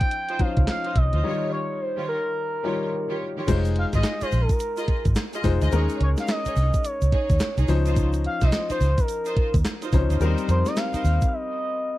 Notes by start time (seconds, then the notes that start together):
Already playing: F3 C#4 D#4 C5 G5
0.01 kick, closed hi-hat
0.11 closed hi-hat
0.29 D#4 F4 C5, closed hi-hat
0.39 F3 C#4 D#4 C5 F5, muted fingered electric bass stroke, kick, closed hi-hat
0.57 C#2, kick, closed hi-hat
0.67 F5, snare, clap, closed hi-hat
0.84 D#4 F4 C5, closed hi-hat
0.96 C2 D#5, kick, closed hi-hat
1.13 D2 D#4 F4 C5, closed hi-hat
1.23 D#3 G3 D#4 F4 G4 C#5
1.52 C#5
1.81 C5
1.97 D#3 F4 G4 C#5
2.09 A#4
2.64 D#3 G3 D#4 F4 G4 C#5
3.09 D#3 F4 G4 C#5
3.37 D#3 F4 G4 C#5
3.47 F1 G#3 D#4 F4 C5, kick, closed hi-hat, crash, shaker
3.65 closed hi-hat, shaker
3.76 F5, closed hi-hat
3.93 G#1 F4 G#4 D#5, kick, snare, closed hi-hat, shaker
4.03 snare, clap, closed hi-hat, shaker
4.21 F4 G#4 C5 D#5, muted fingered electric bass stroke, closed hi-hat, shaker
4.32 A#1, open hi-hat, shaker
4.41 A4
4.49 A#4, kick, closed hi-hat, shaker
4.60 closed hi-hat, shaker
4.77 F4 G#4 D#5, closed hi-hat, shaker
4.88 muted fingered electric bass stroke, kick, closed hi-hat
5.05 G#1, kick, closed hi-hat, shaker
5.15 snare, clap, closed hi-hat, shaker
5.33 F4 G#4 D#5, closed hi-hat, shaker
5.44 F1 G#3 D#4 F4 C5, kick, open hi-hat, shaker
5.61 D2 F4 G#4 D#5, closed hi-hat, shaker
5.71 D#2 G#3 C#4 D#4 G#4 A#4 C#5, closed hi-hat, shaker
5.89 closed hi-hat, shaker
6.00 C#2 C#5, closed hi-hat
6.17 F5, snare, closed hi-hat, shaker
6.28 D#5, snare, clap, closed hi-hat, shaker
6.45 D#4 G#4 C#5, muted fingered electric bass stroke, closed hi-hat, shaker
6.56 C2, open hi-hat, shaker
6.74 kick, closed hi-hat, shaker
6.84 C#5, closed hi-hat, shaker
7.02 C#2, closed hi-hat, shaker
7.12 D#4 G#4 C#5, kick, closed hi-hat
7.30 D#2, kick, closed hi-hat, shaker
7.40 muted fingered electric bass stroke, snare, clap, closed hi-hat, shaker
7.58 C2 D#4 G#4 C#5, closed hi-hat, shaker
7.68 C#2 F3 C#4 D#4 C5, open hi-hat, shaker
7.86 D#4 F4 C5, closed hi-hat, shaker
7.96 kick, closed hi-hat, shaker
8.13 closed hi-hat, shaker
8.24 F5, closed hi-hat
8.41 C2 D#4 F4 C5 D#5, kick, snare, closed hi-hat, shaker
8.52 snare, clap, closed hi-hat, shaker
8.70 D#4 F4 C5, muted fingered electric bass stroke, closed hi-hat, shaker
8.81 C#2, open hi-hat, shaker
8.98 A#4, kick, closed hi-hat, shaker
9.08 closed hi-hat, shaker
9.26 D#4 F4 C5, closed hi-hat, shaker
9.37 muted fingered electric bass stroke, kick, closed hi-hat
9.54 D#2, kick, closed hi-hat, shaker
9.65 snare, clap, closed hi-hat, shaker
9.82 D#4 F4 C5, closed hi-hat, shaker
9.93 C#2 F3 C#4 D#4 C5, kick, open hi-hat, shaker
10.10 D2 D#4 F4 C5, closed hi-hat, shaker
10.20 D#2 G3 C4 D#4 A#4 C5, closed hi-hat, shaker
10.38 closed hi-hat, shaker
10.49 F2 C5, closed hi-hat, shaker
10.66 D#5, snare, closed hi-hat, shaker
10.76 F5, snare, clap, closed hi-hat, shaker
10.94 D#4 A#4 C5, muted fingered electric bass stroke, closed hi-hat, shaker
11.04 D#2, open hi-hat, shaker
11.21 kick, closed hi-hat, shaker
11.28 F5
11.33 D#5